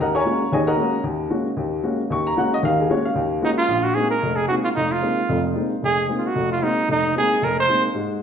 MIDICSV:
0, 0, Header, 1, 3, 480
1, 0, Start_track
1, 0, Key_signature, -5, "minor"
1, 0, Tempo, 265722
1, 912, Time_signature, 4, 2, 24, 8
1, 14858, End_track
2, 0, Start_track
2, 0, Title_t, "Trumpet"
2, 0, Program_c, 0, 56
2, 6225, Note_on_c, 0, 63, 87
2, 6344, Note_off_c, 0, 63, 0
2, 6461, Note_on_c, 0, 65, 99
2, 6931, Note_on_c, 0, 66, 89
2, 6958, Note_off_c, 0, 65, 0
2, 7126, Note_on_c, 0, 68, 91
2, 7153, Note_off_c, 0, 66, 0
2, 7399, Note_off_c, 0, 68, 0
2, 7409, Note_on_c, 0, 70, 87
2, 7877, Note_on_c, 0, 68, 86
2, 7904, Note_off_c, 0, 70, 0
2, 8085, Note_off_c, 0, 68, 0
2, 8096, Note_on_c, 0, 66, 83
2, 8226, Note_off_c, 0, 66, 0
2, 8383, Note_on_c, 0, 65, 79
2, 8475, Note_off_c, 0, 65, 0
2, 8594, Note_on_c, 0, 63, 96
2, 8881, Note_on_c, 0, 65, 83
2, 8908, Note_off_c, 0, 63, 0
2, 9839, Note_off_c, 0, 65, 0
2, 10561, Note_on_c, 0, 68, 102
2, 10986, Note_off_c, 0, 68, 0
2, 11168, Note_on_c, 0, 65, 60
2, 11321, Note_on_c, 0, 66, 79
2, 11348, Note_off_c, 0, 65, 0
2, 11761, Note_off_c, 0, 66, 0
2, 11772, Note_on_c, 0, 65, 80
2, 11980, Note_on_c, 0, 63, 85
2, 12007, Note_off_c, 0, 65, 0
2, 12448, Note_off_c, 0, 63, 0
2, 12486, Note_on_c, 0, 63, 97
2, 12909, Note_off_c, 0, 63, 0
2, 12969, Note_on_c, 0, 68, 96
2, 13437, Note_on_c, 0, 70, 88
2, 13464, Note_off_c, 0, 68, 0
2, 13698, Note_off_c, 0, 70, 0
2, 13728, Note_on_c, 0, 72, 98
2, 14150, Note_off_c, 0, 72, 0
2, 14858, End_track
3, 0, Start_track
3, 0, Title_t, "Upright piano"
3, 0, Program_c, 1, 0
3, 0, Note_on_c, 1, 39, 75
3, 13, Note_on_c, 1, 82, 82
3, 18, Note_on_c, 1, 75, 69
3, 30, Note_on_c, 1, 70, 71
3, 30, Note_on_c, 1, 78, 68
3, 249, Note_off_c, 1, 82, 0
3, 259, Note_off_c, 1, 75, 0
3, 265, Note_off_c, 1, 70, 0
3, 265, Note_off_c, 1, 78, 0
3, 269, Note_on_c, 1, 85, 107
3, 274, Note_on_c, 1, 73, 85
3, 277, Note_on_c, 1, 82, 81
3, 285, Note_on_c, 1, 80, 82
3, 368, Note_off_c, 1, 39, 0
3, 456, Note_on_c, 1, 56, 54
3, 457, Note_on_c, 1, 58, 52
3, 459, Note_on_c, 1, 66, 59
3, 460, Note_on_c, 1, 61, 50
3, 745, Note_off_c, 1, 56, 0
3, 746, Note_off_c, 1, 58, 0
3, 747, Note_off_c, 1, 61, 0
3, 747, Note_off_c, 1, 66, 0
3, 883, Note_off_c, 1, 85, 0
3, 886, Note_off_c, 1, 73, 0
3, 887, Note_off_c, 1, 82, 0
3, 892, Note_off_c, 1, 80, 0
3, 935, Note_on_c, 1, 51, 73
3, 940, Note_on_c, 1, 39, 73
3, 955, Note_on_c, 1, 80, 91
3, 960, Note_on_c, 1, 73, 71
3, 971, Note_on_c, 1, 75, 72
3, 972, Note_on_c, 1, 68, 73
3, 1195, Note_off_c, 1, 75, 0
3, 1207, Note_off_c, 1, 80, 0
3, 1210, Note_off_c, 1, 73, 0
3, 1213, Note_on_c, 1, 70, 74
3, 1213, Note_on_c, 1, 82, 95
3, 1216, Note_off_c, 1, 68, 0
3, 1217, Note_on_c, 1, 78, 75
3, 1222, Note_on_c, 1, 75, 77
3, 1334, Note_off_c, 1, 51, 0
3, 1336, Note_off_c, 1, 39, 0
3, 1384, Note_on_c, 1, 58, 53
3, 1386, Note_on_c, 1, 56, 59
3, 1395, Note_on_c, 1, 66, 64
3, 1400, Note_on_c, 1, 61, 55
3, 1689, Note_off_c, 1, 58, 0
3, 1690, Note_off_c, 1, 56, 0
3, 1695, Note_off_c, 1, 66, 0
3, 1697, Note_off_c, 1, 61, 0
3, 1835, Note_off_c, 1, 70, 0
3, 1835, Note_off_c, 1, 82, 0
3, 1837, Note_off_c, 1, 78, 0
3, 1839, Note_off_c, 1, 75, 0
3, 1871, Note_on_c, 1, 39, 80
3, 2280, Note_off_c, 1, 39, 0
3, 2338, Note_on_c, 1, 56, 54
3, 2339, Note_on_c, 1, 58, 48
3, 2353, Note_on_c, 1, 61, 53
3, 2355, Note_on_c, 1, 66, 66
3, 2646, Note_off_c, 1, 56, 0
3, 2647, Note_off_c, 1, 58, 0
3, 2653, Note_off_c, 1, 61, 0
3, 2655, Note_off_c, 1, 66, 0
3, 2828, Note_on_c, 1, 39, 71
3, 3239, Note_off_c, 1, 39, 0
3, 3310, Note_on_c, 1, 56, 57
3, 3310, Note_on_c, 1, 58, 52
3, 3314, Note_on_c, 1, 61, 52
3, 3320, Note_on_c, 1, 66, 61
3, 3612, Note_off_c, 1, 56, 0
3, 3612, Note_off_c, 1, 58, 0
3, 3614, Note_off_c, 1, 61, 0
3, 3617, Note_off_c, 1, 66, 0
3, 3796, Note_on_c, 1, 39, 76
3, 3828, Note_on_c, 1, 85, 104
3, 4083, Note_off_c, 1, 85, 0
3, 4094, Note_on_c, 1, 82, 105
3, 4203, Note_off_c, 1, 39, 0
3, 4265, Note_on_c, 1, 56, 58
3, 4273, Note_on_c, 1, 58, 51
3, 4273, Note_on_c, 1, 61, 52
3, 4276, Note_off_c, 1, 82, 0
3, 4278, Note_on_c, 1, 66, 67
3, 4300, Note_on_c, 1, 78, 83
3, 4559, Note_off_c, 1, 78, 0
3, 4569, Note_off_c, 1, 56, 0
3, 4573, Note_off_c, 1, 58, 0
3, 4573, Note_off_c, 1, 61, 0
3, 4576, Note_off_c, 1, 66, 0
3, 4586, Note_on_c, 1, 75, 98
3, 4741, Note_on_c, 1, 51, 78
3, 4744, Note_on_c, 1, 39, 74
3, 4762, Note_off_c, 1, 75, 0
3, 4785, Note_on_c, 1, 77, 104
3, 5041, Note_off_c, 1, 77, 0
3, 5059, Note_on_c, 1, 68, 74
3, 5155, Note_off_c, 1, 51, 0
3, 5157, Note_off_c, 1, 39, 0
3, 5229, Note_on_c, 1, 56, 58
3, 5229, Note_on_c, 1, 58, 52
3, 5236, Note_on_c, 1, 61, 54
3, 5238, Note_off_c, 1, 68, 0
3, 5245, Note_on_c, 1, 66, 66
3, 5252, Note_on_c, 1, 73, 80
3, 5514, Note_on_c, 1, 77, 91
3, 5515, Note_off_c, 1, 73, 0
3, 5531, Note_off_c, 1, 56, 0
3, 5531, Note_off_c, 1, 58, 0
3, 5535, Note_off_c, 1, 61, 0
3, 5539, Note_off_c, 1, 66, 0
3, 5692, Note_on_c, 1, 39, 78
3, 5959, Note_off_c, 1, 77, 0
3, 6110, Note_off_c, 1, 39, 0
3, 6171, Note_on_c, 1, 56, 58
3, 6179, Note_on_c, 1, 58, 52
3, 6187, Note_on_c, 1, 61, 51
3, 6191, Note_on_c, 1, 66, 66
3, 6482, Note_off_c, 1, 56, 0
3, 6486, Note_off_c, 1, 58, 0
3, 6490, Note_off_c, 1, 61, 0
3, 6492, Note_off_c, 1, 66, 0
3, 6657, Note_on_c, 1, 34, 67
3, 7073, Note_off_c, 1, 34, 0
3, 7139, Note_on_c, 1, 56, 49
3, 7143, Note_on_c, 1, 60, 50
3, 7145, Note_on_c, 1, 58, 48
3, 7152, Note_on_c, 1, 63, 54
3, 7447, Note_off_c, 1, 56, 0
3, 7449, Note_off_c, 1, 60, 0
3, 7450, Note_off_c, 1, 58, 0
3, 7453, Note_off_c, 1, 63, 0
3, 7628, Note_on_c, 1, 29, 70
3, 8040, Note_off_c, 1, 29, 0
3, 8113, Note_on_c, 1, 56, 50
3, 8120, Note_on_c, 1, 60, 44
3, 8121, Note_on_c, 1, 58, 45
3, 8136, Note_on_c, 1, 63, 57
3, 8414, Note_off_c, 1, 56, 0
3, 8418, Note_off_c, 1, 58, 0
3, 8418, Note_off_c, 1, 60, 0
3, 8426, Note_off_c, 1, 63, 0
3, 8601, Note_on_c, 1, 29, 59
3, 9007, Note_off_c, 1, 29, 0
3, 9059, Note_on_c, 1, 58, 50
3, 9061, Note_on_c, 1, 56, 53
3, 9067, Note_on_c, 1, 60, 45
3, 9075, Note_on_c, 1, 63, 59
3, 9368, Note_off_c, 1, 58, 0
3, 9369, Note_off_c, 1, 56, 0
3, 9372, Note_off_c, 1, 60, 0
3, 9376, Note_off_c, 1, 63, 0
3, 9547, Note_on_c, 1, 29, 68
3, 9558, Note_on_c, 1, 41, 68
3, 9960, Note_off_c, 1, 29, 0
3, 9966, Note_off_c, 1, 41, 0
3, 10033, Note_on_c, 1, 58, 43
3, 10040, Note_on_c, 1, 56, 47
3, 10045, Note_on_c, 1, 63, 59
3, 10051, Note_on_c, 1, 60, 46
3, 10336, Note_off_c, 1, 58, 0
3, 10339, Note_off_c, 1, 56, 0
3, 10341, Note_off_c, 1, 63, 0
3, 10344, Note_off_c, 1, 60, 0
3, 10519, Note_on_c, 1, 29, 66
3, 10927, Note_off_c, 1, 29, 0
3, 10998, Note_on_c, 1, 56, 50
3, 11008, Note_on_c, 1, 58, 48
3, 11016, Note_on_c, 1, 60, 50
3, 11016, Note_on_c, 1, 63, 55
3, 11298, Note_off_c, 1, 56, 0
3, 11303, Note_off_c, 1, 58, 0
3, 11307, Note_off_c, 1, 60, 0
3, 11307, Note_off_c, 1, 63, 0
3, 11469, Note_on_c, 1, 29, 69
3, 11881, Note_off_c, 1, 29, 0
3, 11956, Note_on_c, 1, 58, 49
3, 11964, Note_on_c, 1, 56, 51
3, 11970, Note_on_c, 1, 60, 48
3, 11972, Note_on_c, 1, 63, 60
3, 12257, Note_off_c, 1, 58, 0
3, 12261, Note_off_c, 1, 56, 0
3, 12264, Note_off_c, 1, 60, 0
3, 12265, Note_off_c, 1, 63, 0
3, 12431, Note_on_c, 1, 29, 63
3, 12843, Note_off_c, 1, 29, 0
3, 12926, Note_on_c, 1, 58, 50
3, 12931, Note_on_c, 1, 60, 47
3, 12936, Note_on_c, 1, 56, 53
3, 12936, Note_on_c, 1, 63, 55
3, 13222, Note_off_c, 1, 58, 0
3, 13225, Note_off_c, 1, 60, 0
3, 13227, Note_off_c, 1, 56, 0
3, 13227, Note_off_c, 1, 63, 0
3, 13394, Note_on_c, 1, 29, 70
3, 13804, Note_off_c, 1, 29, 0
3, 13879, Note_on_c, 1, 58, 46
3, 13883, Note_on_c, 1, 56, 48
3, 13895, Note_on_c, 1, 60, 47
3, 13896, Note_on_c, 1, 63, 55
3, 14178, Note_off_c, 1, 58, 0
3, 14180, Note_off_c, 1, 56, 0
3, 14186, Note_off_c, 1, 60, 0
3, 14187, Note_off_c, 1, 63, 0
3, 14345, Note_on_c, 1, 44, 62
3, 14359, Note_on_c, 1, 56, 63
3, 14758, Note_off_c, 1, 44, 0
3, 14766, Note_off_c, 1, 56, 0
3, 14858, End_track
0, 0, End_of_file